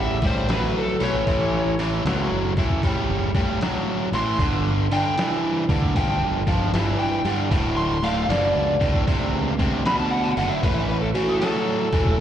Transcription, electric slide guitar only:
0.00 0.23 E5 medium
0.26 0.50 C5 loud
0.51 0.75 B4 medium
0.78 1.02 A4 medium
1.03 3.32 C#5 medium
4.15 4.39 C6 loud
4.93 5.17 G5 loud
5.97 6.21 G5 medium
6.99 7.24 G5 medium
7.77 8.02 C6 loud
8.04 8.29 F5 medium
8.30 8.80 D5 loud
9.86 9.99 B5 loud
9.99 10.09 A5 medium
10.11 10.36 F#5 medium
10.23 10.30 A5 medium
10.38 10.54 F#5 loud
10.50 10.60 E5 medium
10.63 10.80 B4 loud
10.74 10.86 E5 medium
10.89 11.01 B4 medium
11.01 11.08 A4 medium
11.14 11.31 F#4 medium
11.28 11.39 A4 medium
11.40 12.20 A4 loud

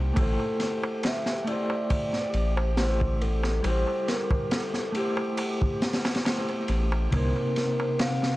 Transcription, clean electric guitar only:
0.00 0.12 C3 medium
0.00 0.12 A#3 medium
0.00 0.13 D#4 medium
0.00 0.13 C5 medium
0.14 1.41 A3 medium
0.14 1.42 E4 medium
0.18 1.43 G4 medium
0.18 1.44 C5 loud
1.44 2.71 A3 medium
1.44 2.72 E4 medium
1.49 2.73 G4 medium
1.49 2.75 C5 medium
2.77 3.60 A3 medium
2.77 3.60 E4 medium
2.77 3.60 G4 medium
2.77 3.61 C5 medium
3.62 4.89 G3 medium
3.62 4.90 E4 medium
3.67 4.91 G4 medium
3.67 4.92 C5 loud
4.92 6.19 A3 medium
4.92 6.20 E4 medium
4.97 6.22 G4 medium
4.97 6.23 C5 medium
6.26 7.08 A3 medium
6.26 7.08 E4 medium
6.26 7.09 G4 medium
6.26 7.09 C5 medium
7.11 8.37 C3 loud
7.11 8.37 A#3 medium
7.15 8.37 D#4 medium
7.15 8.37 C5 loud

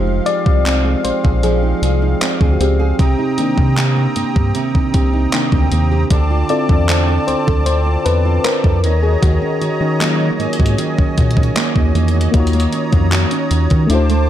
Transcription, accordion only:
0.00 8.80 C4 medium
0.00 2.96 F5 medium
3.00 6.08 G5 medium
3.00 6.08 A#5 medium
3.00 6.08 D#6 medium
6.12 8.81 D5 medium
6.12 8.81 A5 medium
6.12 8.82 D6 medium
8.84 12.31 C#5 medium
8.84 12.31 D#5 medium
8.84 10.38 A#5 medium
8.84 12.31 D#6 medium
10.39 12.32 G#5 medium
12.34 13.89 C#5 medium
12.34 13.89 A#5 medium
12.34 13.89 D#6 medium
13.90 14.29 C5 medium
13.90 14.29 A5 medium
13.90 14.29 D6 medium

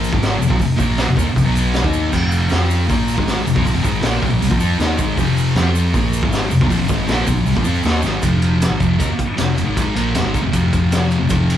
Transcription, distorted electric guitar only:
0.00 0.11 A#2 medium
0.00 0.12 F3 loud
0.00 0.12 A#3 loud
0.11 0.38 G#2 medium
0.11 0.38 D#3 medium
0.11 0.40 G#3 medium
0.38 0.49 F2 medium
0.38 0.47 C3 medium
0.48 0.58 B2 medium
0.48 0.58 F#3 medium
0.57 0.74 F2 medium
0.57 0.74 C3 medium
0.76 1.06 A#2 medium
0.76 1.06 F3 loud
0.76 1.07 A#3 loud
1.07 1.17 F2 medium
1.07 1.16 C3 medium
1.16 1.26 D#3 medium
1.16 1.26 A#3 loud
1.27 muted distorted electric guitar stroke medium
1.35 1.45 F2 medium
1.35 1.43 C3 medium
1.44 1.82 B2 medium
1.44 1.83 F#3 medium
1.44 1.83 B3 medium
1.83 2.11 D#3 medium
1.83 2.11 A#3 medium
1.83 2.12 D#4 medium
2.10 2.49 F2 medium
2.10 2.48 C3 medium
2.10 2.48 F3 medium
2.49 2.87 F3 medium
2.49 2.88 C4 medium
2.49 2.88 F4 loud
2.88 3.16 A#2 medium
2.88 3.16 F3 loud
2.88 3.17 A#3 loud
3.15 3.44 G#2 medium
3.15 3.45 D#3 medium
3.15 3.45 G#3 medium
3.46 3.55 F2 medium
3.46 3.55 C3 medium
3.55 3.64 B2 medium
3.55 3.65 F#3 medium
3.65 3.74 A#2 medium
3.65 3.74 F3 loud
3.74 3.82 F2 loud
3.74 3.83 C3 loud
3.83 4.02 G#2 medium
3.83 4.02 D#3 medium
3.83 4.02 G#3 loud
4.02 4.21 A#2 medium
4.02 4.21 F3 loud
4.02 4.21 A#3 loud
4.21 4.30 B2 medium
4.21 4.31 F#3 loud
4.32 4.40 A#2 medium
4.32 4.41 F3 medium
4.41 4.50 C3 medium
4.41 4.50 G3 loud
4.50 4.59 A#2 medium
4.50 4.58 F3 loud
4.59 4.78 F3 loud
4.59 4.78 C4 medium
4.59 4.79 F4 loud
4.79 4.97 D#3 medium
4.79 4.98 A#3 loud
4.79 4.98 D#4 loud
4.98 5.17 G#2 medium
4.98 5.17 D#3 medium
4.98 5.17 G#3 loud
5.18 5.55 F2 medium
5.18 5.55 C3 loud
5.18 5.55 F3 loud
5.56 5.93 F3 medium
5.56 5.94 C4 loud
5.56 5.94 F4 medium
5.94 6.22 A#2 medium
5.94 6.22 F3 loud
5.94 6.22 A#3 loud
6.22 6.49 G#2 medium
6.22 6.50 D#3 loud
6.22 6.51 G#3 loud
6.50 6.60 F2 medium
6.50 6.60 C3 medium
6.61 6.68 B2 medium
6.61 6.69 F#3 medium
6.68 6.78 A#2 medium
6.68 6.79 F3 loud
6.78 6.87 F2 medium
6.78 6.88 C3 loud
6.89 7.07 G#2 medium
6.89 7.07 D#3 medium
6.89 7.08 G#3 loud
7.08 7.26 A#2 medium
7.08 7.26 F3 medium
7.08 7.27 A#3 loud
7.27 7.36 B2 loud
7.27 7.36 F#3 medium
7.37 7.45 A#2 medium
7.37 7.46 F3 medium
7.46 7.55 C3 loud
7.46 7.55 G3 loud
7.55 7.64 A#2 medium
7.55 7.63 F3 loud
7.64 7.83 F3 medium
7.64 7.84 C4 loud
7.64 7.84 F4 loud
7.84 8.03 D#3 medium
7.84 8.03 A#3 medium
7.84 8.03 D#4 medium
8.03 8.22 G#2 medium
8.03 8.22 D#3 medium
8.03 8.22 G#3 medium
8.23 8.69 F2 medium
8.23 8.69 C3 medium
8.23 8.71 F3 loud
8.69 8.78 G#2 medium
8.69 8.79 D#3 medium
8.79 8.98 F2 medium
8.79 8.98 C3 medium
8.79 8.99 F3 loud
8.98 9.08 D#3 medium
8.98 9.08 A#3 loud
9.09 muted distorted electric guitar stroke medium
9.37 9.54 F2 medium
9.37 9.54 C3 medium
9.37 9.57 F3 medium
9.55 9.64 F2 medium
9.55 9.65 C3 medium
9.65 9.94 G#2 medium
9.65 9.95 D#3 medium
9.65 9.95 G#3 loud
9.96 10.14 A#2 medium
9.96 10.14 F3 loud
9.96 10.15 A#3 loud
10.15 10.23 F2 medium
10.15 10.24 C3 medium
10.23 10.42 G#2 medium
10.23 10.43 D#3 loud
10.23 10.43 G#3 loud
10.43 10.51 F2 medium
10.43 10.52 C3 medium
10.52 11.18 F2 medium
10.52 11.18 C3 loud
10.52 11.20 F3 loud
11.20 11.27 F2 medium
11.20 11.28 C3 medium
11.29 11.57 F2 medium
11.29 11.57 C3 medium
11.29 11.57 F3 loud

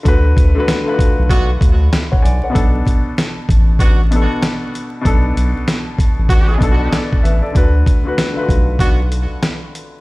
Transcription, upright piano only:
0.00 0.03 D3 medium
0.00 0.40 D3 medium
0.00 0.05 A3 medium
0.00 0.88 F4 medium
0.00 0.06 F#4 medium
0.00 0.08 B4 medium
0.05 0.41 A3 medium
0.05 0.42 F#4 medium
0.05 0.43 B4 loud
0.55 0.77 D3 loud
0.55 0.78 A3 medium
0.55 0.79 F#4 medium
0.60 0.79 B4 loud
0.84 1.80 D3 medium
0.84 1.80 A3 medium
0.84 0.92 F4 medium
0.89 1.82 B4 medium
0.94 1.84 F#4 medium
2.11 2.23 C#5 medium
2.11 2.23 F#5 medium
2.22 2.42 D5 medium
2.22 2.42 G#5 medium
2.43 2.73 C#5 medium
2.43 2.73 F#5 medium
2.50 3.46 B2 medium
2.50 3.47 B3 medium
2.50 3.48 D4 medium
2.55 3.49 A4 medium
4.11 4.83 B2 medium
4.11 4.84 B3 medium
4.11 4.85 D4 medium
4.16 4.86 A4 medium
5.01 5.97 B2 medium
5.01 5.98 B3 medium
5.01 5.99 D4 medium
5.06 5.99 A4 medium
6.58 7.32 B2 medium
6.58 7.33 B3 medium
6.58 7.34 D4 medium
6.63 6.92 A4 medium
6.93 7.23 A4 medium
6.93 7.22 D5 medium
7.23 7.42 B4 medium
7.23 7.42 E5 medium
7.42 7.73 A4 medium
7.42 7.72 D5 medium
7.52 7.90 D3 medium
7.52 7.91 A3 medium
7.52 7.92 F#4 medium
7.57 7.92 B4 medium
8.04 8.26 D3 medium
8.04 8.27 A3 medium
8.04 8.28 F#4 medium
8.08 8.29 B4 medium
8.33 9.29 D3 medium
8.33 9.30 A3 medium
8.33 8.42 F4 medium
8.38 9.32 B4 medium
8.43 9.34 F#4 medium

